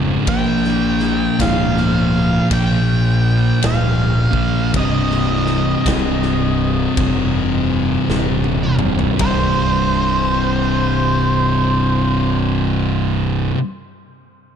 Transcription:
Already playing: F1 C#2 G#2 C#3 A#5
0.27 A#1 A#2 F3 A#3 G5, kick, ride bell
0.64 snare
1.00 snare
1.39 C#1 F5, kick, snare, ride bell
1.77 snare
2.51 A#1 G5, kick, ride bell
3.63 C#1 F5, snare, ride bell
4.33 A#1 A#2 F3 A#3, kick
4.74 C1 C2 G2 C3 D#5, kick, ride bell
5.11 snare
5.46 snare
5.86 C1, kick, snare, ride bell
6.23 snare
6.97 F1, kick, ride bell
8.08 D#1, snare
8.44 high tom
8.78 C2 G2 C3, mid tom
8.99 floor tom
9.18 C1 C2 G2 C5, kick, floor tom, ride bell
9.22 C3

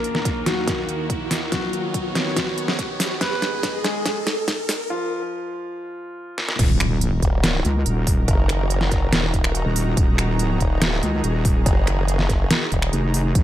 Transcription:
Already playing: D#2 D#3 A#3 F#4 A#4, riser
0.04 closed hi-hat
0.15 snare
0.25 kick, closed hi-hat
0.46 F#3 F#4, snare, closed hi-hat
0.68 kick, snare, closed hi-hat
0.89 closed hi-hat
1.10 kick, closed hi-hat
1.31 snare, open hi-hat
1.52 D#2 F#3 B3 F#4 C#5, kick, snare, closed hi-hat
1.73 closed hi-hat
1.94 kick, closed hi-hat
2.15 snare, closed hi-hat
2.37 kick, snare, closed hi-hat
2.58 closed hi-hat
2.68 snare
2.79 kick, closed hi-hat
3.00 snare, open hi-hat
3.21 G#2 B3 G#4 B4 D#5, kick, snare, closed hi-hat
3.42 snare, closed hi-hat
3.63 kick, snare, closed hi-hat
3.84 G#3 G#4, snare, closed hi-hat
4.06 kick, snare, closed hi-hat
4.27 snare, closed hi-hat
4.48 kick, snare, closed hi-hat
4.69 snare, open hi-hat
4.90 F3 F4
6.38 snare
6.49 snare
6.59 D#1 D#3 D#4 F#4 A#4 A#5, kick, closed hi-hat, crash, impact
6.80 finger snap, closed hi-hat
7.01 closed hi-hat
7.22 D#1, kick, closed hi-hat
7.44 finger snap, snare, closed hi-hat
7.65 C#2, closed hi-hat
7.86 D#1, closed hi-hat
8.07 kick, open hi-hat
8.28 F#1, kick, closed hi-hat
8.49 finger snap, closed hi-hat
8.70 closed hi-hat
8.81 snare
8.91 kick, closed hi-hat
9.13 D#1, snare, closed hi-hat
9.34 kick, closed hi-hat
9.44 D#1, finger snap
9.55 closed hi-hat
9.65 D#1
9.76 open hi-hat
9.97 D#1 G#4, kick, closed hi-hat
10.18 finger snap, closed hi-hat
10.39 D1, closed hi-hat
10.60 D#1, kick, closed hi-hat
10.82 finger snap, snare, closed hi-hat
11.03 C#2, closed hi-hat
11.24 D#1, closed hi-hat
11.45 kick, open hi-hat
11.66 F#1, kick, closed hi-hat
11.87 finger snap, closed hi-hat
12.08 closed hi-hat
12.19 snare
12.29 kick, closed hi-hat
12.51 snare, closed hi-hat
12.72 D#1, kick, closed hi-hat
12.82 finger snap
12.93 F1, closed hi-hat
13.14 open hi-hat
13.35 A#1 C#4 F4 A#4, kick, closed hi-hat

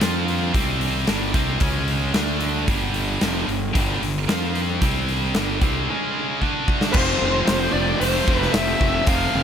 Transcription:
0.00 F2 F3 C4 F4, snare, open hi-hat
0.28 open hi-hat
0.54 C2 C3 G3 C4, kick, open hi-hat
0.81 open hi-hat
1.06 G1 G2 D3 G3, snare, open hi-hat
1.34 C2 C3 G3 C4, kick, open hi-hat
1.60 C#2 C#3 G#3 C#4, kick, open hi-hat
1.88 open hi-hat
2.14 D2 D3 A3 D4, snare, open hi-hat
2.41 open hi-hat
2.68 G1 G2 D3 G3, kick, open hi-hat
2.94 open hi-hat
3.21 F1 F2 C3 F3, snare, open hi-hat
3.48 G1 G2 D3, open hi-hat
3.75 G1 G2 D3 G3, kick, open hi-hat
4.02 G1 G2 D3, open hi-hat
4.28 F2 F3 C4 F4, snare, open hi-hat
4.55 open hi-hat
4.82 C2 C3 G3 C4, kick, open hi-hat
5.08 open hi-hat
5.35 G1 G2 D3 G3, snare, open hi-hat
5.61 C2 C3 G3 C4, kick, open hi-hat
5.90 C#3 G#3 C#4
6.42 D3 A3 D4, kick
6.68 kick
6.81 snare
6.91 F1 F2 C3 F3 C4 G4 C5, kick, crash
6.95 F2 C3 F3 A3 C4
7.22 F1
7.47 F1, snare, open hi-hat
7.73 F1 D5
7.99 F1 F2 C3 F3 A3 C4 C5, open hi-hat
8.28 F1 F2 C3 F3, kick
8.37 B4
8.42 snare
8.53 F1 F2 C3 F3 E5, snare, open hi-hat
8.81 F1, kick
9.05 F1 F2 C3 F3 A3 C4 A4 F5, kick, open hi-hat
9.10 C3 F3
9.35 F1

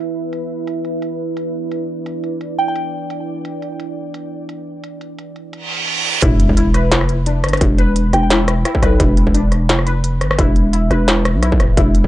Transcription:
Already playing: E4 B4 E5
0.33 closed hi-hat
0.67 D5, closed hi-hat
0.85 closed hi-hat
1.02 closed hi-hat
1.37 closed hi-hat
1.72 closed hi-hat
2.06 closed hi-hat
2.24 closed hi-hat
2.41 closed hi-hat
2.59 G5
2.68 G5
2.76 closed hi-hat
3.10 closed hi-hat
3.45 closed hi-hat
3.62 closed hi-hat
3.80 closed hi-hat
4.14 closed hi-hat
4.49 closed hi-hat
4.84 closed hi-hat
5.01 closed hi-hat
5.19 closed hi-hat
5.36 closed hi-hat
5.53 closed hi-hat, reverse cymbal
5.70 closed hi-hat
5.88 closed hi-hat
6.05 closed hi-hat
6.22 E1 E4, kick, closed hi-hat, sub drop
6.40 closed hi-hat
6.49 kick
6.57 E4, closed hi-hat
6.74 B4, cross-stick, closed hi-hat
6.92 F1, snare, closed hi-hat
7.01 cross-stick
7.09 closed hi-hat
7.26 D4, closed hi-hat
7.44 G1, cross-stick, closed hi-hat
7.49 closed hi-hat
7.53 cross-stick, closed hi-hat
7.57 E1, kick, closed hi-hat
7.61 closed hi-hat
7.78 B4, closed hi-hat
7.96 closed hi-hat
8.13 E1 G5, cross-stick, closed hi-hat
8.23 G5
8.30 E4, snare, closed hi-hat
8.48 cross-stick, closed hi-hat
8.65 E4, cross-stick, closed hi-hat
8.75 kick
8.82 B1 B4, cross-stick, closed hi-hat
9.00 E1, kick, closed hi-hat
9.17 closed hi-hat
9.27 kick
9.34 D4, closed hi-hat
9.52 cross-stick, closed hi-hat
9.69 F1, snare, closed hi-hat
9.79 cross-stick
9.86 B4, closed hi-hat
10.04 closed hi-hat
10.21 G1, cross-stick, closed hi-hat
10.31 cross-stick
10.38 E1 E4, kick, closed hi-hat
10.56 closed hi-hat
10.73 E4, closed hi-hat
10.91 E1 B4, cross-stick, closed hi-hat
11.08 snare, closed hi-hat
11.25 cross-stick, closed hi-hat
11.35 B1
11.43 E4, cross-stick, closed hi-hat
11.52 kick
11.60 D1, cross-stick, closed hi-hat
11.77 E1 E4, kick, closed hi-hat
11.95 closed hi-hat
12.04 kick

